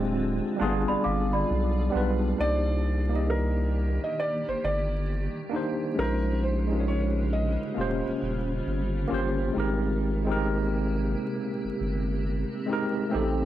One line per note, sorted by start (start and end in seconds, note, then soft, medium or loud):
0.00 0.40 D1 loud
0.00 0.58 D3 medium
0.00 0.61 G#3 medium
0.00 0.56 C4 medium
0.00 0.61 C4 medium
0.00 0.60 D4 medium
0.00 0.58 F4 medium
0.00 0.61 F4 medium
0.00 0.61 G4 medium
0.00 0.62 G#4 loud
0.56 2.37 B2 medium
0.56 1.71 G3 medium
0.56 0.67 A#3 medium
0.56 1.72 D4 loud
0.56 2.37 F4 medium
0.56 2.37 G#4 medium
0.61 0.86 G1 loud
0.61 1.75 B3 medium
0.61 1.73 F4 medium
0.61 1.74 G#4 loud
0.88 0.96 G1 medium
0.88 1.04 D5 medium
0.88 1.03 B5 medium
1.04 1.44 G1 medium
1.04 1.32 F5 medium
1.04 1.32 D6 medium
1.33 2.35 D5 medium
1.33 2.35 B5 medium
1.50 1.89 B1 loud
1.90 2.28 G3 medium
1.90 2.29 B3 medium
1.90 2.30 D4 medium
1.95 2.34 B1 medium
1.95 2.31 F4 medium
1.95 2.31 B4 medium
2.36 3.99 C2 loud
2.36 5.93 D#3 medium
2.36 2.87 A#3 medium
2.36 5.93 A#3 medium
2.36 2.88 D4 medium
2.36 2.88 D#4 medium
2.36 7.72 G4 medium
2.40 2.89 G4 medium
2.40 2.90 C5 medium
2.40 3.25 D5 loud
3.09 4.38 A#3 medium
3.09 4.40 D#4 medium
3.09 4.39 D5 medium
3.14 4.41 G4 medium
3.14 4.41 D#5 medium
3.30 3.99 A#4 medium
4.04 4.17 D#5 medium
4.19 4.45 D5 medium
4.48 4.54 G1 medium
4.48 4.64 C5 medium
4.64 5.28 G1 medium
4.64 5.33 D5 medium
5.50 5.87 A#3 medium
5.50 5.88 D4 medium
5.50 5.88 D#4 medium
5.55 5.89 G4 medium
5.55 5.90 C5 medium
5.95 7.57 A#1 loud
5.95 9.51 C#3 medium
5.95 6.45 G#3 medium
5.95 7.74 G#3 medium
5.95 6.46 C#4 medium
5.95 9.51 C#4 medium
5.95 6.47 D#4 medium
5.95 6.39 A#4 medium
6.00 6.48 F4 medium
6.00 6.49 C5 medium
6.43 6.83 C5 medium
6.67 7.74 G#3 medium
6.67 7.75 C#4 medium
6.67 7.76 D#4 medium
6.72 7.77 F4 medium
6.72 6.77 A#4 medium
6.80 7.81 C#5 medium
6.88 7.32 C#5 medium
7.33 8.91 D#5 medium
7.74 8.02 D#1 medium
7.74 9.53 G3 medium
7.74 8.88 A#3 medium
7.74 8.89 C#4 medium
7.74 9.53 F4 medium
7.74 8.90 F4 medium
7.79 8.91 G4 medium
7.79 8.91 C5 medium
8.06 8.12 D#1 soft
8.22 8.61 D#1 medium
8.67 9.06 G1 medium
9.08 9.45 A#3 medium
9.08 9.46 C#4 medium
9.08 9.47 F4 medium
9.12 9.50 G1 loud
9.12 9.47 G4 medium
9.12 9.48 C5 loud
9.53 11.15 G#1 loud
9.53 13.45 C3 medium
9.53 10.03 G#3 medium
9.53 11.33 A#3 medium
9.53 10.04 C4 medium
9.53 10.05 D#4 medium
9.53 13.45 G4 medium
9.58 10.06 G4 medium
9.58 10.07 A#4 loud
10.25 11.54 G#3 medium
10.25 11.55 C4 medium
10.25 11.56 D#4 medium
10.30 11.57 G4 medium
10.30 11.57 A#4 loud
11.34 13.11 C4 medium
11.65 11.71 G1 medium
11.80 12.44 G1 medium
12.66 13.03 G#3 medium
12.66 13.04 C4 medium
12.66 13.05 D#4 medium
12.71 13.06 G4 medium
12.71 13.07 A#4 loud
13.09 13.45 A3 medium
13.09 13.45 C4 medium
13.09 13.45 D#4 medium
13.14 13.45 A1 loud
13.14 13.45 G4 medium
13.14 13.45 A4 medium